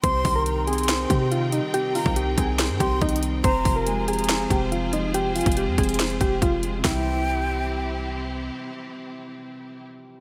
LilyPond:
<<
  \new Staff \with { instrumentName = "Flute" } { \time 4/4 \key f \dorian \tempo 4 = 141 c'''4 bes''8 c'''4. r4 | r8 bes''8 r4. c'''8 r4 | bes''4 aes''8 bes''4. r4 | r8 aes''8 r2. |
g''2. r4 | r1 | }
  \new Staff \with { instrumentName = "Synth keys" } { \time 4/4 \key f \dorian c''8. bes'8. aes'4 g'8 f'8 ees'8 | g'8 f'8 g'8 aes'4 g'8 ees'8 r8 | c''8. bes'8. aes'4 g'8 f'8 ees'8 | g'8 f'8 g'8 aes'4 g'8 f'8 r8 |
e'2. r4 | r1 | }
  \new Staff \with { instrumentName = "String section" } { \time 4/4 \key f \dorian <c c' ees' g''>1~ | <c c' ees' g''>1 | <f f' aes' c''>1~ | <f f' aes' c''>1 |
<c c' e' g'>1~ | <c c' e' g'>1 | }
  \new Staff \with { instrumentName = "Grand piano" } { \clef bass \time 4/4 \key f \dorian c8 ees4 c'8 c''8 c8 ees8 g8 | c8 ees4 c'8 c''8 c8 ees8 g8 | c8 f8 aes8 c'8 c''8 c8 f8 aes8 | c8 f8 aes8 c'8 c''8 c8 f8 aes8 |
<c e g c'>1~ | <c e g c'>1 | }
  \new Staff \with { instrumentName = "808-style bass" } { \clef bass \time 4/4 \key f \dorian c,8 c,2 c4~ c16 r16 | r8. c,8. c,8. g,16 c,8 c,4 | f,,8 f,,2 f,,4.~ | f,,8. f,,8 f,16 f,,4 f,,8 f,,4 |
c,1 | r1 | }
  \new DrumStaff \with { instrumentName = "Drums" } \drummode { \time 4/4 <hh bd>8 <hho bd>8 hh8 hh32 hh32 hh32 hh32 <hh sn>8 <hh bd>8 hh8 hh8 | hh8 hho16 bd16 hh8 <hh bd>8 <hh sn>8 <hh bd>8 \tuplet 3/2 { <hh bd>16 hh16 hh16 hh16 r16 r16 } | <hh bd>8 <hho bd>8 hh8 hh32 hh32 hh32 hh32 <hh sn>8 <hh bd>8 hh8 hh8 | hh8 <hh hho>32 hh32 <hh bd>32 hh32 hh8 <hh bd>32 hh32 hh32 hh32 <hh sn>16 hh16 <hh bd>8 <hh bd>8 hh8 |
<hho bd sn>4 r4 r4 r4 | r4 r4 r4 r4 | }
>>